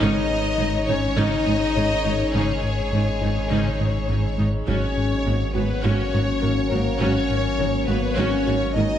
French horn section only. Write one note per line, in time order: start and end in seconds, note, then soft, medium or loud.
0.01 0.84 D#4 loud
0.88 1.17 C#4 medium
1.16 2.34 D#4 loud
2.34 4.34 G#3 medium
4.68 5.51 C#4 medium
5.54 5.84 B3 medium
5.85 6.72 C#4 medium
6.69 6.99 A#3 medium
6.99 7.85 C#4 medium
7.87 8.17 B3 medium
8.17 8.74 C#4 loud
8.75 8.99 D#4 medium